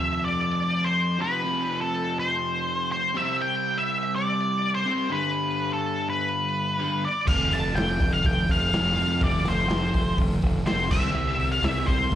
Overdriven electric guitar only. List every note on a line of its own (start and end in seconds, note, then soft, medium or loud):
0.00 1.19 F2 medium
0.00 1.19 C3 medium
0.00 1.18 F3 loud
1.19 1.43 F2 medium
1.19 1.44 C3 medium
1.19 1.43 F3 medium
1.44 3.13 F2 loud
1.44 3.13 C3 loud
1.44 3.14 F3 loud
3.14 4.83 C3 loud
3.14 4.84 G3 loud
3.14 4.84 C4 loud
4.86 5.08 C3 medium
4.86 5.09 G3 loud
4.86 5.09 C4 loud
5.09 6.77 G2 medium
5.09 6.78 D3 loud
5.09 6.79 G3 loud
6.78 7.01 G2 medium
6.78 7.02 D3 medium
6.78 7.02 G3 loud
7.26 8.95 F2 loud
7.26 8.96 C3 medium
7.26 8.95 F3 loud
8.96 9.21 F2 medium
8.96 9.20 C3 medium
8.96 9.19 F3 medium
9.22 10.90 F2 medium
9.22 10.90 C3 medium
9.22 10.91 F3 loud
10.91 12.15 C3 medium
10.91 12.15 G3 loud
10.91 12.15 C4 loud